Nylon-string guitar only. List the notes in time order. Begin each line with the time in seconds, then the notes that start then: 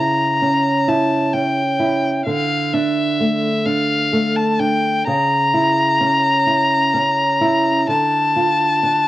Already playing: C#3 E4
0.42 C#4
0.88 E4
1.34 C#4
1.79 E4
2.26 D3
2.73 D4
3.20 A3
3.66 D4
4.12 A3
4.59 D4
5.07 C#3
5.54 E4
6.01 C#4
6.47 E4
6.94 C#4
7.41 E4
7.88 D3
8.36 F4
8.83 D4